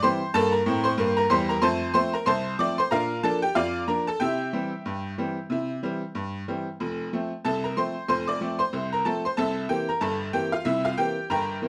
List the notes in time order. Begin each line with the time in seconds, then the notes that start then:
0.03 E3 G3 C4 C5 C6
0.34 G2 A#3 A4 A5
0.52 A#4 A#5
0.66 A2 C4
0.84 C5 C6
0.98 G2 A#3
1.17 A#4 A#5
1.30 E2 G3 C5 C6
1.49 A#4 A#5
1.62 F2 A3 C5 A5 C6
1.94 F3 A3 C4 C5 C6
2.13 A#4 A#5
2.26 C2 C5 A5 C6
2.59 F3 A3 C4 D5 D6
2.78 C5 C6
2.91 A#2 D4 A#4 F5 A#5
3.23 F3 A#3 D4 A4 A5
3.42 G4 G5
3.55 F2 F4 D5 F5
3.88 F3 A#3 D4 A#4 A#5
4.07 A4 A5
4.20 C3 E4 G4 E5 G5
4.53 E3 G3 C4
4.86 G2
5.18 E3 G3 C4
5.50 C3 E4
5.83 E3 G3 C4
6.15 G2
6.48 E3 G3 C4
6.80 F1 F2
7.13 F3 A3 C4
7.45 C2 C3 A4 A5
7.64 A#4 A#5
7.77 F3 A3 C4 C5 C6
8.08 F1 F2 C5 C6
8.28 D5 D6
8.41 F3 A3 C4
8.59 C5 C6
8.73 C2 C3
8.93 A#4 A#5
9.05 F3 A3 C4 A4 A5
9.25 C5 C6
9.37 C2 C3 A4 E5 A5
9.69 E3 A#3 C4 G4 G5
9.89 A#4 A#5
10.01 G1 G2 A4 A5
10.33 E3 A#3 C4 G4 G5
10.52 F4 F5
10.65 C2 C3 E4 E5
10.85 F4 F5
10.98 E3 A#3 C4 G4 G5
11.30 G1 G2 A#4 G5 A#5
11.62 E3 A#3 C4